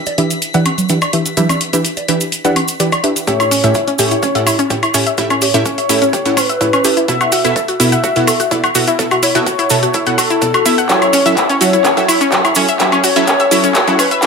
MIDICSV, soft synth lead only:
0, 0, Header, 1, 2, 480
1, 0, Start_track
1, 0, Tempo, 476190
1, 1382, Time_signature, 4, 2, 24, 8
1, 14378, End_track
2, 0, Start_track
2, 0, Title_t, "Soft synth lead"
2, 0, Program_c, 0, 80
2, 3300, Note_on_c, 0, 73, 107
2, 3929, Note_off_c, 0, 73, 0
2, 4020, Note_on_c, 0, 73, 98
2, 4649, Note_off_c, 0, 73, 0
2, 5462, Note_on_c, 0, 73, 95
2, 6421, Note_on_c, 0, 71, 95
2, 6436, Note_off_c, 0, 73, 0
2, 7050, Note_off_c, 0, 71, 0
2, 7141, Note_on_c, 0, 76, 101
2, 7769, Note_off_c, 0, 76, 0
2, 7861, Note_on_c, 0, 76, 99
2, 8489, Note_off_c, 0, 76, 0
2, 9301, Note_on_c, 0, 73, 96
2, 10169, Note_off_c, 0, 73, 0
2, 10261, Note_on_c, 0, 69, 96
2, 10889, Note_off_c, 0, 69, 0
2, 10981, Note_on_c, 0, 73, 106
2, 11609, Note_off_c, 0, 73, 0
2, 11701, Note_on_c, 0, 73, 101
2, 12330, Note_off_c, 0, 73, 0
2, 13142, Note_on_c, 0, 73, 103
2, 14010, Note_off_c, 0, 73, 0
2, 14101, Note_on_c, 0, 71, 98
2, 14378, Note_off_c, 0, 71, 0
2, 14378, End_track
0, 0, End_of_file